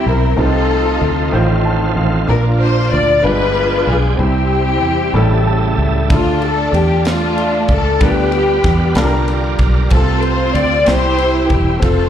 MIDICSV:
0, 0, Header, 1, 6, 480
1, 0, Start_track
1, 0, Key_signature, -1, "major"
1, 0, Tempo, 635593
1, 289, Time_signature, 6, 3, 24, 8
1, 9131, End_track
2, 0, Start_track
2, 0, Title_t, "String section"
2, 0, Program_c, 0, 48
2, 0, Note_on_c, 0, 60, 83
2, 0, Note_on_c, 0, 64, 82
2, 53, Note_on_c, 0, 70, 94
2, 266, Note_off_c, 0, 64, 0
2, 268, Note_off_c, 0, 60, 0
2, 291, Note_off_c, 0, 70, 0
2, 291, Note_on_c, 0, 65, 82
2, 291, Note_on_c, 0, 69, 112
2, 294, Note_on_c, 0, 63, 75
2, 1220, Note_off_c, 0, 65, 0
2, 1222, Note_off_c, 0, 63, 0
2, 1250, Note_off_c, 0, 69, 0
2, 1735, Note_on_c, 0, 70, 106
2, 1739, Note_on_c, 0, 62, 78
2, 1743, Note_on_c, 0, 65, 82
2, 1842, Note_off_c, 0, 70, 0
2, 1973, Note_on_c, 0, 72, 105
2, 2194, Note_off_c, 0, 72, 0
2, 2210, Note_on_c, 0, 74, 113
2, 2424, Note_off_c, 0, 62, 0
2, 2425, Note_off_c, 0, 65, 0
2, 2447, Note_on_c, 0, 62, 89
2, 2447, Note_on_c, 0, 71, 127
2, 2449, Note_on_c, 0, 65, 90
2, 2450, Note_off_c, 0, 74, 0
2, 2928, Note_off_c, 0, 71, 0
2, 2937, Note_on_c, 0, 68, 104
2, 3138, Note_off_c, 0, 62, 0
2, 3138, Note_off_c, 0, 65, 0
2, 3169, Note_on_c, 0, 64, 75
2, 3173, Note_off_c, 0, 68, 0
2, 3173, Note_on_c, 0, 67, 108
2, 3175, Note_on_c, 0, 60, 74
2, 4338, Note_off_c, 0, 64, 0
2, 4340, Note_off_c, 0, 67, 0
2, 4341, Note_off_c, 0, 60, 0
2, 4617, Note_on_c, 0, 62, 80
2, 4618, Note_on_c, 0, 57, 73
2, 4622, Note_on_c, 0, 65, 104
2, 4839, Note_off_c, 0, 65, 0
2, 4863, Note_on_c, 0, 69, 104
2, 5095, Note_off_c, 0, 69, 0
2, 5100, Note_on_c, 0, 67, 106
2, 5302, Note_off_c, 0, 62, 0
2, 5303, Note_off_c, 0, 57, 0
2, 5334, Note_off_c, 0, 67, 0
2, 5341, Note_on_c, 0, 57, 87
2, 5342, Note_on_c, 0, 62, 81
2, 5359, Note_on_c, 0, 65, 105
2, 5793, Note_off_c, 0, 65, 0
2, 5839, Note_on_c, 0, 69, 106
2, 6025, Note_off_c, 0, 57, 0
2, 6025, Note_off_c, 0, 62, 0
2, 6064, Note_off_c, 0, 69, 0
2, 6066, Note_on_c, 0, 59, 76
2, 6080, Note_on_c, 0, 67, 109
2, 6987, Note_off_c, 0, 59, 0
2, 7024, Note_off_c, 0, 67, 0
2, 7496, Note_on_c, 0, 69, 114
2, 7497, Note_on_c, 0, 60, 89
2, 7500, Note_on_c, 0, 65, 81
2, 7716, Note_off_c, 0, 69, 0
2, 7719, Note_on_c, 0, 72, 109
2, 7961, Note_on_c, 0, 74, 119
2, 7964, Note_off_c, 0, 72, 0
2, 8183, Note_off_c, 0, 60, 0
2, 8184, Note_off_c, 0, 65, 0
2, 8198, Note_on_c, 0, 72, 127
2, 8205, Note_off_c, 0, 74, 0
2, 8215, Note_on_c, 0, 64, 97
2, 8215, Note_on_c, 0, 67, 92
2, 8669, Note_off_c, 0, 67, 0
2, 8678, Note_on_c, 0, 67, 101
2, 8684, Note_off_c, 0, 72, 0
2, 8902, Note_off_c, 0, 64, 0
2, 8916, Note_on_c, 0, 69, 114
2, 8924, Note_off_c, 0, 67, 0
2, 8931, Note_on_c, 0, 65, 81
2, 8934, Note_on_c, 0, 60, 75
2, 9131, Note_off_c, 0, 60, 0
2, 9131, Note_off_c, 0, 65, 0
2, 9131, Note_off_c, 0, 69, 0
2, 9131, End_track
3, 0, Start_track
3, 0, Title_t, "Grand piano"
3, 0, Program_c, 1, 0
3, 0, Control_c, 1, 64, 127
3, 0, Note_on_c, 1, 48, 64
3, 0, Note_on_c, 1, 60, 63
3, 0, Note_on_c, 1, 64, 67
3, 0, Note_on_c, 1, 67, 67
3, 250, Note_off_c, 1, 60, 0
3, 262, Note_off_c, 1, 64, 0
3, 273, Note_off_c, 1, 67, 0
3, 274, Note_on_c, 1, 57, 65
3, 278, Note_on_c, 1, 60, 63
3, 283, Note_off_c, 1, 48, 0
3, 283, Note_on_c, 1, 48, 69
3, 283, Note_on_c, 1, 63, 63
3, 291, Note_on_c, 1, 65, 62
3, 295, Note_on_c, 1, 71, 60
3, 300, Control_c, 1, 64, 0
3, 341, Note_off_c, 1, 71, 0
3, 344, Note_on_c, 1, 72, 73
3, 448, Control_c, 1, 64, 127
3, 976, Note_off_c, 1, 48, 0
3, 987, Note_off_c, 1, 57, 0
3, 994, Note_off_c, 1, 60, 0
3, 997, Note_off_c, 1, 63, 0
3, 999, Note_on_c, 1, 57, 88
3, 1005, Note_off_c, 1, 65, 0
3, 1005, Note_on_c, 1, 60, 88
3, 1009, Note_off_c, 1, 72, 0
3, 1009, Note_on_c, 1, 45, 85
3, 1009, Note_on_c, 1, 63, 78
3, 1017, Note_on_c, 1, 65, 83
3, 1018, Control_c, 1, 64, 0
3, 1020, Note_on_c, 1, 72, 98
3, 1139, Control_c, 1, 64, 127
3, 1248, Note_on_c, 1, 81, 80
3, 1472, Note_off_c, 1, 81, 0
3, 1485, Note_on_c, 1, 77, 75
3, 1699, Note_off_c, 1, 45, 0
3, 1710, Note_off_c, 1, 77, 0
3, 1714, Note_off_c, 1, 65, 0
3, 1715, Note_on_c, 1, 62, 77
3, 1722, Note_on_c, 1, 46, 66
3, 1724, Note_off_c, 1, 57, 0
3, 1725, Note_on_c, 1, 65, 62
3, 1727, Note_off_c, 1, 60, 0
3, 1729, Note_off_c, 1, 63, 0
3, 1735, Note_off_c, 1, 72, 0
3, 1735, Note_on_c, 1, 70, 71
3, 1739, Control_c, 1, 64, 0
3, 1858, Control_c, 1, 64, 127
3, 2415, Note_off_c, 1, 46, 0
3, 2430, Note_off_c, 1, 62, 0
3, 2434, Note_off_c, 1, 65, 0
3, 2435, Note_on_c, 1, 56, 74
3, 2441, Note_on_c, 1, 62, 70
3, 2445, Note_on_c, 1, 43, 71
3, 2445, Note_on_c, 1, 65, 69
3, 2452, Note_off_c, 1, 70, 0
3, 2452, Note_on_c, 1, 55, 69
3, 2457, Note_on_c, 1, 71, 86
3, 2458, Control_c, 1, 64, 0
3, 2593, Control_c, 1, 64, 127
3, 3137, Note_off_c, 1, 43, 0
3, 3156, Note_on_c, 1, 60, 71
3, 3162, Note_off_c, 1, 56, 0
3, 3164, Note_on_c, 1, 48, 66
3, 3164, Note_on_c, 1, 64, 57
3, 3165, Note_off_c, 1, 62, 0
3, 3167, Note_off_c, 1, 65, 0
3, 3170, Note_off_c, 1, 55, 0
3, 3173, Note_off_c, 1, 71, 0
3, 3176, Note_on_c, 1, 67, 81
3, 3180, Control_c, 1, 64, 0
3, 3319, Control_c, 1, 64, 127
3, 3856, Note_off_c, 1, 48, 0
3, 3881, Note_on_c, 1, 55, 84
3, 3882, Note_off_c, 1, 60, 0
3, 3884, Note_on_c, 1, 57, 85
3, 3885, Note_off_c, 1, 64, 0
3, 3890, Note_on_c, 1, 45, 77
3, 3890, Note_on_c, 1, 58, 64
3, 3892, Note_off_c, 1, 67, 0
3, 3897, Note_on_c, 1, 64, 80
3, 3898, Control_c, 1, 64, 0
3, 3900, Note_on_c, 1, 69, 102
3, 3939, Note_off_c, 1, 58, 0
3, 3940, Note_on_c, 1, 49, 73
3, 4009, Control_c, 1, 64, 127
3, 4131, Note_on_c, 1, 81, 76
3, 4353, Note_off_c, 1, 81, 0
3, 4372, Note_on_c, 1, 76, 73
3, 4579, Note_off_c, 1, 45, 0
3, 4594, Note_off_c, 1, 76, 0
3, 4594, Note_on_c, 1, 62, 66
3, 4604, Note_off_c, 1, 64, 0
3, 4605, Note_off_c, 1, 55, 0
3, 4606, Note_off_c, 1, 57, 0
3, 4614, Note_off_c, 1, 69, 0
3, 4615, Note_on_c, 1, 64, 47
3, 4616, Note_on_c, 1, 50, 70
3, 4617, Control_c, 1, 64, 0
3, 4634, Note_off_c, 1, 49, 0
3, 4639, Note_on_c, 1, 69, 77
3, 4661, Note_off_c, 1, 64, 0
3, 4663, Note_on_c, 1, 65, 64
3, 4770, Control_c, 1, 64, 127
3, 5302, Note_off_c, 1, 50, 0
3, 6012, Note_off_c, 1, 62, 0
3, 6035, Note_off_c, 1, 69, 0
3, 6044, Note_on_c, 1, 55, 71
3, 6046, Note_off_c, 1, 65, 0
3, 6049, Note_on_c, 1, 59, 62
3, 6053, Note_on_c, 1, 50, 61
3, 6053, Note_on_c, 1, 62, 66
3, 6057, Control_c, 1, 64, 0
3, 6057, Note_on_c, 1, 65, 58
3, 6064, Note_on_c, 1, 70, 61
3, 6105, Note_off_c, 1, 70, 0
3, 6113, Note_on_c, 1, 71, 73
3, 6195, Control_c, 1, 64, 127
3, 6741, Note_off_c, 1, 50, 0
3, 6752, Note_off_c, 1, 55, 0
3, 6763, Note_on_c, 1, 55, 94
3, 6765, Note_off_c, 1, 62, 0
3, 6769, Note_off_c, 1, 59, 0
3, 6770, Note_off_c, 1, 65, 0
3, 6775, Note_on_c, 1, 50, 88
3, 6776, Note_on_c, 1, 62, 87
3, 6779, Control_c, 1, 64, 0
3, 6781, Note_on_c, 1, 65, 85
3, 6784, Note_on_c, 1, 69, 82
3, 6800, Note_off_c, 1, 71, 0
3, 6825, Note_off_c, 1, 69, 0
3, 6835, Note_on_c, 1, 70, 107
3, 6932, Control_c, 1, 64, 127
3, 7462, Note_off_c, 1, 50, 0
3, 7485, Note_off_c, 1, 65, 0
3, 7486, Note_off_c, 1, 55, 0
3, 7486, Note_on_c, 1, 60, 66
3, 7492, Note_off_c, 1, 62, 0
3, 7495, Note_on_c, 1, 48, 68
3, 7497, Note_on_c, 1, 65, 66
3, 7499, Control_c, 1, 64, 0
3, 7508, Note_on_c, 1, 69, 74
3, 7522, Note_off_c, 1, 70, 0
3, 7622, Control_c, 1, 64, 127
3, 8182, Note_off_c, 1, 48, 0
3, 8188, Note_off_c, 1, 60, 0
3, 8199, Note_on_c, 1, 60, 71
3, 8210, Note_on_c, 1, 64, 72
3, 8213, Note_off_c, 1, 65, 0
3, 8213, Note_on_c, 1, 48, 74
3, 8217, Control_c, 1, 64, 0
3, 8219, Note_off_c, 1, 69, 0
3, 8221, Note_on_c, 1, 67, 77
3, 8331, Control_c, 1, 64, 127
3, 8899, Note_off_c, 1, 60, 0
3, 8901, Note_off_c, 1, 48, 0
3, 8910, Note_on_c, 1, 60, 68
3, 8930, Note_off_c, 1, 64, 0
3, 8932, Note_on_c, 1, 65, 66
3, 8935, Note_off_c, 1, 67, 0
3, 8939, Control_c, 1, 64, 0
3, 8956, Note_on_c, 1, 69, 76
3, 9074, Control_c, 1, 64, 127
3, 9131, Note_off_c, 1, 60, 0
3, 9131, Note_off_c, 1, 65, 0
3, 9131, Note_off_c, 1, 69, 0
3, 9131, End_track
4, 0, Start_track
4, 0, Title_t, "Tonewheel organ"
4, 0, Program_c, 2, 16
4, 0, Note_on_c, 2, 55, 64
4, 0, Note_on_c, 2, 60, 59
4, 0, Note_on_c, 2, 64, 67
4, 255, Note_off_c, 2, 60, 0
4, 256, Note_off_c, 2, 55, 0
4, 256, Note_off_c, 2, 64, 0
4, 292, Note_on_c, 2, 57, 62
4, 292, Note_on_c, 2, 65, 70
4, 295, Note_on_c, 2, 53, 56
4, 295, Note_on_c, 2, 60, 57
4, 298, Note_on_c, 2, 63, 70
4, 1002, Note_off_c, 2, 53, 0
4, 1003, Note_off_c, 2, 57, 0
4, 1004, Note_off_c, 2, 60, 0
4, 1004, Note_off_c, 2, 65, 0
4, 1011, Note_on_c, 2, 53, 74
4, 1012, Note_on_c, 2, 51, 89
4, 1012, Note_on_c, 2, 57, 86
4, 1013, Note_on_c, 2, 60, 83
4, 1013, Note_on_c, 2, 65, 98
4, 1014, Note_off_c, 2, 63, 0
4, 1726, Note_on_c, 2, 64, 60
4, 1730, Note_off_c, 2, 53, 0
4, 1730, Note_off_c, 2, 57, 0
4, 1730, Note_on_c, 2, 62, 63
4, 1731, Note_off_c, 2, 51, 0
4, 1731, Note_off_c, 2, 60, 0
4, 1731, Note_off_c, 2, 65, 0
4, 1734, Note_on_c, 2, 58, 74
4, 1777, Note_off_c, 2, 64, 0
4, 1777, Note_on_c, 2, 65, 75
4, 2433, Note_off_c, 2, 62, 0
4, 2442, Note_on_c, 2, 62, 65
4, 2443, Note_on_c, 2, 53, 70
4, 2443, Note_on_c, 2, 59, 60
4, 2443, Note_on_c, 2, 68, 67
4, 2444, Note_on_c, 2, 79, 78
4, 2451, Note_off_c, 2, 58, 0
4, 2473, Note_off_c, 2, 65, 0
4, 3164, Note_on_c, 2, 60, 54
4, 3164, Note_on_c, 2, 64, 74
4, 3165, Note_off_c, 2, 62, 0
4, 3165, Note_on_c, 2, 55, 62
4, 3166, Note_off_c, 2, 53, 0
4, 3166, Note_off_c, 2, 59, 0
4, 3166, Note_off_c, 2, 68, 0
4, 3166, Note_off_c, 2, 79, 0
4, 3871, Note_off_c, 2, 55, 0
4, 3873, Note_off_c, 2, 64, 0
4, 3876, Note_on_c, 2, 57, 77
4, 3878, Note_on_c, 2, 69, 98
4, 3879, Note_on_c, 2, 49, 76
4, 3880, Note_on_c, 2, 55, 80
4, 3882, Note_on_c, 2, 64, 74
4, 3886, Note_off_c, 2, 60, 0
4, 4592, Note_off_c, 2, 57, 0
4, 4593, Note_off_c, 2, 64, 0
4, 4596, Note_on_c, 2, 62, 57
4, 4602, Note_on_c, 2, 57, 62
4, 4602, Note_on_c, 2, 64, 61
4, 4603, Note_off_c, 2, 69, 0
4, 4604, Note_off_c, 2, 49, 0
4, 4604, Note_off_c, 2, 55, 0
4, 4649, Note_on_c, 2, 65, 74
4, 4654, Note_off_c, 2, 64, 0
4, 6013, Note_off_c, 2, 62, 0
4, 6016, Note_off_c, 2, 57, 0
4, 6040, Note_off_c, 2, 65, 0
4, 6050, Note_on_c, 2, 71, 79
4, 6055, Note_on_c, 2, 62, 61
4, 6056, Note_on_c, 2, 55, 66
4, 6056, Note_on_c, 2, 59, 56
4, 6056, Note_on_c, 2, 65, 60
4, 6762, Note_off_c, 2, 55, 0
4, 6762, Note_off_c, 2, 65, 0
4, 6763, Note_off_c, 2, 62, 0
4, 6769, Note_off_c, 2, 71, 0
4, 6771, Note_on_c, 2, 55, 87
4, 6771, Note_on_c, 2, 65, 78
4, 6772, Note_off_c, 2, 59, 0
4, 6772, Note_on_c, 2, 62, 80
4, 6775, Note_on_c, 2, 70, 95
4, 7478, Note_off_c, 2, 65, 0
4, 7487, Note_on_c, 2, 65, 70
4, 7489, Note_on_c, 2, 60, 64
4, 7490, Note_off_c, 2, 55, 0
4, 7490, Note_off_c, 2, 62, 0
4, 7490, Note_on_c, 2, 56, 51
4, 7492, Note_off_c, 2, 70, 0
4, 7538, Note_off_c, 2, 56, 0
4, 7539, Note_on_c, 2, 57, 66
4, 8205, Note_off_c, 2, 60, 0
4, 8208, Note_off_c, 2, 65, 0
4, 8214, Note_on_c, 2, 60, 68
4, 8217, Note_on_c, 2, 64, 74
4, 8218, Note_on_c, 2, 55, 73
4, 8234, Note_off_c, 2, 57, 0
4, 8916, Note_off_c, 2, 60, 0
4, 8924, Note_on_c, 2, 57, 62
4, 8925, Note_on_c, 2, 60, 60
4, 8926, Note_on_c, 2, 65, 78
4, 8933, Note_off_c, 2, 64, 0
4, 8934, Note_off_c, 2, 55, 0
4, 9131, Note_off_c, 2, 57, 0
4, 9131, Note_off_c, 2, 60, 0
4, 9131, Note_off_c, 2, 65, 0
4, 9131, End_track
5, 0, Start_track
5, 0, Title_t, "Fingered electric bass"
5, 0, Program_c, 3, 33
5, 48, Note_on_c, 3, 35, 87
5, 269, Note_off_c, 3, 35, 0
5, 287, Note_on_c, 3, 36, 101
5, 738, Note_off_c, 3, 36, 0
5, 766, Note_on_c, 3, 38, 92
5, 988, Note_off_c, 3, 38, 0
5, 1006, Note_on_c, 3, 33, 99
5, 1457, Note_off_c, 3, 33, 0
5, 1482, Note_on_c, 3, 33, 80
5, 1706, Note_off_c, 3, 33, 0
5, 1727, Note_on_c, 3, 34, 114
5, 2178, Note_off_c, 3, 34, 0
5, 2210, Note_on_c, 3, 38, 92
5, 2430, Note_off_c, 3, 38, 0
5, 2446, Note_on_c, 3, 31, 97
5, 2897, Note_off_c, 3, 31, 0
5, 2923, Note_on_c, 3, 35, 78
5, 3146, Note_off_c, 3, 35, 0
5, 3164, Note_on_c, 3, 36, 116
5, 3644, Note_off_c, 3, 36, 0
5, 3644, Note_on_c, 3, 40, 85
5, 3867, Note_off_c, 3, 40, 0
5, 3880, Note_on_c, 3, 33, 101
5, 4334, Note_off_c, 3, 33, 0
5, 4366, Note_on_c, 3, 37, 86
5, 4588, Note_off_c, 3, 37, 0
5, 4608, Note_on_c, 3, 38, 103
5, 5058, Note_off_c, 3, 38, 0
5, 5082, Note_on_c, 3, 40, 98
5, 5775, Note_off_c, 3, 40, 0
5, 5806, Note_on_c, 3, 37, 75
5, 6028, Note_off_c, 3, 37, 0
5, 6051, Note_on_c, 3, 38, 112
5, 6499, Note_off_c, 3, 38, 0
5, 6525, Note_on_c, 3, 40, 89
5, 6747, Note_off_c, 3, 40, 0
5, 6761, Note_on_c, 3, 36, 107
5, 7215, Note_off_c, 3, 36, 0
5, 7241, Note_on_c, 3, 35, 90
5, 7465, Note_off_c, 3, 35, 0
5, 7487, Note_on_c, 3, 36, 107
5, 7937, Note_off_c, 3, 36, 0
5, 7963, Note_on_c, 3, 38, 84
5, 8186, Note_off_c, 3, 38, 0
5, 8212, Note_on_c, 3, 36, 115
5, 8660, Note_off_c, 3, 36, 0
5, 8687, Note_on_c, 3, 28, 89
5, 8909, Note_off_c, 3, 28, 0
5, 8927, Note_on_c, 3, 29, 108
5, 9131, Note_off_c, 3, 29, 0
5, 9131, End_track
6, 0, Start_track
6, 0, Title_t, "Drums"
6, 4606, Note_on_c, 9, 51, 76
6, 4609, Note_on_c, 9, 36, 113
6, 4682, Note_off_c, 9, 51, 0
6, 4684, Note_off_c, 9, 36, 0
6, 4846, Note_on_c, 9, 51, 38
6, 4921, Note_off_c, 9, 51, 0
6, 5092, Note_on_c, 9, 51, 51
6, 5167, Note_off_c, 9, 51, 0
6, 5325, Note_on_c, 9, 51, 71
6, 5337, Note_on_c, 9, 38, 105
6, 5400, Note_off_c, 9, 51, 0
6, 5413, Note_off_c, 9, 38, 0
6, 5571, Note_on_c, 9, 51, 43
6, 5646, Note_off_c, 9, 51, 0
6, 5802, Note_on_c, 9, 51, 44
6, 5806, Note_on_c, 9, 36, 81
6, 5878, Note_off_c, 9, 51, 0
6, 5881, Note_off_c, 9, 36, 0
6, 6046, Note_on_c, 9, 51, 73
6, 6050, Note_on_c, 9, 36, 104
6, 6122, Note_off_c, 9, 51, 0
6, 6125, Note_off_c, 9, 36, 0
6, 6283, Note_on_c, 9, 51, 38
6, 6358, Note_off_c, 9, 51, 0
6, 6523, Note_on_c, 9, 51, 54
6, 6527, Note_on_c, 9, 36, 100
6, 6531, Note_on_c, 9, 38, 37
6, 6599, Note_off_c, 9, 51, 0
6, 6603, Note_off_c, 9, 36, 0
6, 6607, Note_off_c, 9, 38, 0
6, 6760, Note_on_c, 9, 51, 70
6, 6772, Note_on_c, 9, 38, 112
6, 6836, Note_off_c, 9, 51, 0
6, 6848, Note_off_c, 9, 38, 0
6, 7006, Note_on_c, 9, 51, 46
6, 7082, Note_off_c, 9, 51, 0
6, 7239, Note_on_c, 9, 51, 47
6, 7244, Note_on_c, 9, 36, 86
6, 7315, Note_off_c, 9, 51, 0
6, 7320, Note_off_c, 9, 36, 0
6, 7479, Note_on_c, 9, 51, 74
6, 7486, Note_on_c, 9, 36, 100
6, 7554, Note_off_c, 9, 51, 0
6, 7562, Note_off_c, 9, 36, 0
6, 7721, Note_on_c, 9, 51, 36
6, 7797, Note_off_c, 9, 51, 0
6, 7968, Note_on_c, 9, 51, 55
6, 8044, Note_off_c, 9, 51, 0
6, 8204, Note_on_c, 9, 51, 77
6, 8216, Note_on_c, 9, 38, 105
6, 8279, Note_off_c, 9, 51, 0
6, 8291, Note_off_c, 9, 38, 0
6, 8446, Note_on_c, 9, 51, 44
6, 8522, Note_off_c, 9, 51, 0
6, 8683, Note_on_c, 9, 51, 46
6, 8686, Note_on_c, 9, 36, 81
6, 8759, Note_off_c, 9, 51, 0
6, 8762, Note_off_c, 9, 36, 0
6, 8929, Note_on_c, 9, 51, 75
6, 8930, Note_on_c, 9, 36, 104
6, 9005, Note_off_c, 9, 36, 0
6, 9005, Note_off_c, 9, 51, 0
6, 9131, End_track
0, 0, End_of_file